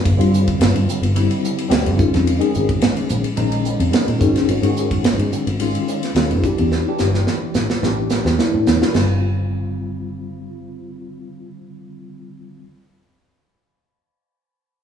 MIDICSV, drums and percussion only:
0, 0, Header, 1, 2, 480
1, 0, Start_track
1, 0, Tempo, 557103
1, 40, Time_signature, 4, 2, 24, 8
1, 12780, End_track
2, 0, Start_track
2, 0, Title_t, "Drums"
2, 47, Note_on_c, 9, 36, 92
2, 47, Note_on_c, 9, 51, 74
2, 133, Note_off_c, 9, 36, 0
2, 133, Note_off_c, 9, 51, 0
2, 179, Note_on_c, 9, 51, 59
2, 265, Note_off_c, 9, 51, 0
2, 290, Note_on_c, 9, 44, 74
2, 376, Note_off_c, 9, 44, 0
2, 410, Note_on_c, 9, 51, 60
2, 412, Note_on_c, 9, 36, 74
2, 496, Note_off_c, 9, 51, 0
2, 498, Note_off_c, 9, 36, 0
2, 524, Note_on_c, 9, 51, 73
2, 531, Note_on_c, 9, 38, 92
2, 610, Note_off_c, 9, 51, 0
2, 617, Note_off_c, 9, 38, 0
2, 652, Note_on_c, 9, 51, 52
2, 738, Note_off_c, 9, 51, 0
2, 766, Note_on_c, 9, 44, 84
2, 852, Note_off_c, 9, 44, 0
2, 890, Note_on_c, 9, 51, 53
2, 976, Note_off_c, 9, 51, 0
2, 999, Note_on_c, 9, 51, 73
2, 1085, Note_off_c, 9, 51, 0
2, 1126, Note_on_c, 9, 51, 54
2, 1212, Note_off_c, 9, 51, 0
2, 1245, Note_on_c, 9, 44, 73
2, 1331, Note_off_c, 9, 44, 0
2, 1365, Note_on_c, 9, 51, 57
2, 1452, Note_off_c, 9, 51, 0
2, 1476, Note_on_c, 9, 51, 76
2, 1483, Note_on_c, 9, 38, 95
2, 1562, Note_off_c, 9, 51, 0
2, 1570, Note_off_c, 9, 38, 0
2, 1604, Note_on_c, 9, 51, 47
2, 1690, Note_off_c, 9, 51, 0
2, 1712, Note_on_c, 9, 44, 68
2, 1716, Note_on_c, 9, 36, 92
2, 1798, Note_off_c, 9, 44, 0
2, 1802, Note_off_c, 9, 36, 0
2, 1843, Note_on_c, 9, 51, 51
2, 1850, Note_on_c, 9, 38, 28
2, 1929, Note_off_c, 9, 51, 0
2, 1937, Note_off_c, 9, 38, 0
2, 1958, Note_on_c, 9, 51, 69
2, 2044, Note_off_c, 9, 51, 0
2, 2078, Note_on_c, 9, 51, 49
2, 2164, Note_off_c, 9, 51, 0
2, 2191, Note_on_c, 9, 44, 71
2, 2277, Note_off_c, 9, 44, 0
2, 2318, Note_on_c, 9, 36, 73
2, 2318, Note_on_c, 9, 51, 50
2, 2404, Note_off_c, 9, 36, 0
2, 2404, Note_off_c, 9, 51, 0
2, 2426, Note_on_c, 9, 51, 70
2, 2434, Note_on_c, 9, 38, 86
2, 2512, Note_off_c, 9, 51, 0
2, 2520, Note_off_c, 9, 38, 0
2, 2556, Note_on_c, 9, 51, 51
2, 2642, Note_off_c, 9, 51, 0
2, 2664, Note_on_c, 9, 44, 82
2, 2750, Note_off_c, 9, 44, 0
2, 2792, Note_on_c, 9, 51, 52
2, 2879, Note_off_c, 9, 51, 0
2, 2904, Note_on_c, 9, 51, 66
2, 2990, Note_off_c, 9, 51, 0
2, 3030, Note_on_c, 9, 51, 55
2, 3117, Note_off_c, 9, 51, 0
2, 3144, Note_on_c, 9, 44, 74
2, 3230, Note_off_c, 9, 44, 0
2, 3275, Note_on_c, 9, 51, 57
2, 3361, Note_off_c, 9, 51, 0
2, 3388, Note_on_c, 9, 51, 74
2, 3396, Note_on_c, 9, 38, 91
2, 3474, Note_off_c, 9, 51, 0
2, 3482, Note_off_c, 9, 38, 0
2, 3514, Note_on_c, 9, 51, 52
2, 3600, Note_off_c, 9, 51, 0
2, 3625, Note_on_c, 9, 44, 71
2, 3626, Note_on_c, 9, 36, 84
2, 3711, Note_off_c, 9, 44, 0
2, 3712, Note_off_c, 9, 36, 0
2, 3753, Note_on_c, 9, 51, 54
2, 3760, Note_on_c, 9, 38, 26
2, 3839, Note_off_c, 9, 51, 0
2, 3847, Note_off_c, 9, 38, 0
2, 3865, Note_on_c, 9, 51, 66
2, 3951, Note_off_c, 9, 51, 0
2, 3991, Note_on_c, 9, 51, 56
2, 4077, Note_off_c, 9, 51, 0
2, 4106, Note_on_c, 9, 44, 71
2, 4192, Note_off_c, 9, 44, 0
2, 4231, Note_on_c, 9, 36, 75
2, 4231, Note_on_c, 9, 51, 59
2, 4317, Note_off_c, 9, 36, 0
2, 4317, Note_off_c, 9, 51, 0
2, 4344, Note_on_c, 9, 51, 70
2, 4352, Note_on_c, 9, 38, 87
2, 4431, Note_off_c, 9, 51, 0
2, 4438, Note_off_c, 9, 38, 0
2, 4475, Note_on_c, 9, 51, 54
2, 4561, Note_off_c, 9, 51, 0
2, 4586, Note_on_c, 9, 44, 73
2, 4672, Note_off_c, 9, 44, 0
2, 4714, Note_on_c, 9, 51, 53
2, 4800, Note_off_c, 9, 51, 0
2, 4822, Note_on_c, 9, 51, 73
2, 4908, Note_off_c, 9, 51, 0
2, 4953, Note_on_c, 9, 51, 53
2, 5039, Note_off_c, 9, 51, 0
2, 5065, Note_on_c, 9, 44, 73
2, 5151, Note_off_c, 9, 44, 0
2, 5194, Note_on_c, 9, 51, 54
2, 5202, Note_on_c, 9, 38, 27
2, 5280, Note_off_c, 9, 51, 0
2, 5288, Note_off_c, 9, 38, 0
2, 5304, Note_on_c, 9, 51, 65
2, 5312, Note_on_c, 9, 38, 92
2, 5390, Note_off_c, 9, 51, 0
2, 5398, Note_off_c, 9, 38, 0
2, 5434, Note_on_c, 9, 51, 47
2, 5521, Note_off_c, 9, 51, 0
2, 5544, Note_on_c, 9, 44, 70
2, 5545, Note_on_c, 9, 36, 85
2, 5630, Note_off_c, 9, 44, 0
2, 5632, Note_off_c, 9, 36, 0
2, 5671, Note_on_c, 9, 51, 47
2, 5757, Note_off_c, 9, 51, 0
2, 5788, Note_on_c, 9, 38, 44
2, 5874, Note_off_c, 9, 38, 0
2, 6016, Note_on_c, 9, 44, 67
2, 6024, Note_on_c, 9, 38, 50
2, 6102, Note_off_c, 9, 44, 0
2, 6110, Note_off_c, 9, 38, 0
2, 6156, Note_on_c, 9, 38, 45
2, 6242, Note_off_c, 9, 38, 0
2, 6265, Note_on_c, 9, 38, 53
2, 6351, Note_off_c, 9, 38, 0
2, 6498, Note_on_c, 9, 44, 76
2, 6505, Note_on_c, 9, 38, 60
2, 6584, Note_off_c, 9, 44, 0
2, 6592, Note_off_c, 9, 38, 0
2, 6633, Note_on_c, 9, 38, 53
2, 6719, Note_off_c, 9, 38, 0
2, 6748, Note_on_c, 9, 38, 59
2, 6834, Note_off_c, 9, 38, 0
2, 6976, Note_on_c, 9, 44, 67
2, 6984, Note_on_c, 9, 38, 63
2, 7062, Note_off_c, 9, 44, 0
2, 7070, Note_off_c, 9, 38, 0
2, 7118, Note_on_c, 9, 38, 58
2, 7204, Note_off_c, 9, 38, 0
2, 7229, Note_on_c, 9, 38, 69
2, 7315, Note_off_c, 9, 38, 0
2, 7465, Note_on_c, 9, 44, 64
2, 7473, Note_on_c, 9, 38, 71
2, 7551, Note_off_c, 9, 44, 0
2, 7559, Note_off_c, 9, 38, 0
2, 7600, Note_on_c, 9, 38, 65
2, 7686, Note_off_c, 9, 38, 0
2, 7704, Note_on_c, 9, 55, 59
2, 7711, Note_on_c, 9, 38, 68
2, 7790, Note_off_c, 9, 55, 0
2, 7798, Note_off_c, 9, 38, 0
2, 12780, End_track
0, 0, End_of_file